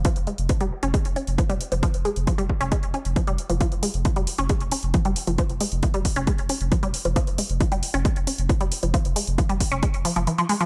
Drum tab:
HH |xxxxxx-xxxxxxxxx|xxxxxx-xxxxxxxxx|xxoxxxoxxxoxxxox|xxoxxxoxxxoxxxox|
BD |o---o---o---o---|o---o-o-o---o---|o---o---o---o---|o---o-o-o---o---|

HH |xxoxxxoxxxoxxxox|xxoxxxoxxxoxxxox|
BD |o---o---o---o---|o---o-o-o-------|